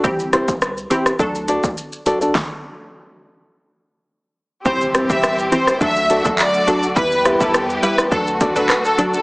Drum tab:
HH |--x---x---x---x-|----------------|--x---x---x---x-|--x---x---x---x-|
SH |xxxxxxxxxxxxxxxx|----------------|xxxxxxxxxxxxxxxx|xxxxxxxxxxxxxxxx|
CP |----------------|----------------|------------x---|------------x---|
SD |--r-r--r--------|o---------------|--r-r--r--------|--r-r--r----r---|
BD |o--o----o--o----|o---------------|o--o----o--o----|o--o----o-o-----|